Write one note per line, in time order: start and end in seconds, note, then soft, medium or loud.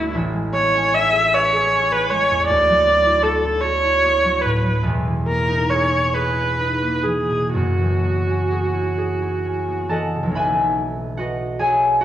0.00 0.17 G1 medium
0.00 0.17 D2 medium
0.00 3.84 A3 medium
0.00 0.52 B3 medium
0.00 0.17 D4 medium
0.00 0.14 E4 medium
0.00 0.93 E4 medium
0.14 2.53 A1 medium
0.33 2.10 G#3 medium
0.53 1.90 B3 medium
0.53 0.95 C#5 loud
0.74 1.72 C#4 medium
0.94 3.05 E4 medium
0.94 1.36 E5 loud
1.13 1.51 G#4 medium
1.33 5.23 B4 medium
1.33 1.93 C#5 loud
1.52 2.52 G#4 medium
1.73 2.52 C#4 medium
1.91 2.86 B3 medium
1.91 2.11 B4 medium
2.09 2.52 G#3 medium
2.09 2.46 C#5 loud
2.31 2.53 E2 medium
2.47 4.88 D2 medium
2.47 3.25 D5 loud
2.69 4.23 F#3 medium
2.87 4.03 B3 medium
3.06 3.44 E4 medium
3.23 3.63 F#4 medium
3.23 3.63 A4 medium
3.45 3.84 E4 medium
3.61 4.88 F#4 medium
3.61 4.43 C#5 loud
3.85 5.91 E4 medium
4.04 7.94 B3 medium
4.24 4.63 F#3 medium
4.41 4.88 A2 medium
4.41 4.83 B4 medium
4.64 4.88 F#3 medium
4.83 7.58 E1 medium
4.83 7.59 E2 medium
5.05 7.04 E3 medium
5.26 6.81 A#3 medium
5.26 5.71 A#4 medium
5.48 6.58 D#4 medium
5.69 6.13 G#4 medium
5.69 6.15 C#5 medium
5.92 6.34 E4 medium
6.14 8.50 G#4 medium
6.14 7.05 B4 medium
6.36 8.72 E4 medium
6.59 7.59 D#4 medium
6.82 7.59 A#3 soft
7.03 7.59 E3 soft
7.03 7.53 G#4 medium
7.29 7.59 B2 soft
7.53 10.38 F#1 medium
7.53 10.39 F#2 medium
7.53 9.85 F#4 medium
7.79 9.88 E3 soft
8.04 9.67 B3 soft
8.27 9.44 C#4 soft
8.51 8.96 G#4 soft
8.74 9.21 E4 medium
8.97 10.39 G#4 medium
9.22 10.40 E4 soft
9.45 10.30 C#4 soft
9.68 12.05 B3 soft
9.88 10.39 E3 soft
9.88 10.39 A4 medium
9.88 11.18 D#5 medium
9.88 10.38 A5 medium
9.93 11.16 F#5 medium
10.15 10.40 C#3 soft
10.23 12.05 B1 medium
10.23 12.05 F#3 medium
10.28 12.05 A#3 medium
10.28 12.05 C#4 medium
10.34 12.05 D#4 medium
10.34 11.18 B4 medium
10.34 11.59 E5 medium
10.34 11.58 G#5 medium
10.34 12.05 B5 loud
11.17 12.00 F#4 medium
11.17 12.01 B4 medium
11.17 12.01 D#5 medium
11.17 12.00 F#5 medium
11.59 12.05 G#4 medium
11.59 12.05 C#5 medium
11.59 12.05 E5 medium
11.59 12.05 G#5 loud
12.01 12.05 F#4 medium
12.01 12.05 F#5 loud